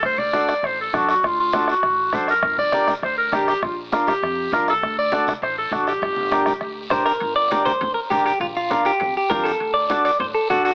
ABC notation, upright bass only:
X:1
M:4/4
L:1/8
Q:1/4=201
K:Dm
V:1 name="Upright bass" clef=bass
D,,4 A,,,2 ^F,,2 | D,,4 A,,,2 ^F,,2 | G,,,4 D,,2 A,,,2 | B,,,4 F,,2 C,,2 |
D,,4 A,,,2 A,,,2 | G,,,4 D,,2 B,,,2 | G,,,4 D,, z A,,,2 | B,,,4 F,, z F,,2 |
D,,4 A,,, z A,,,2 |]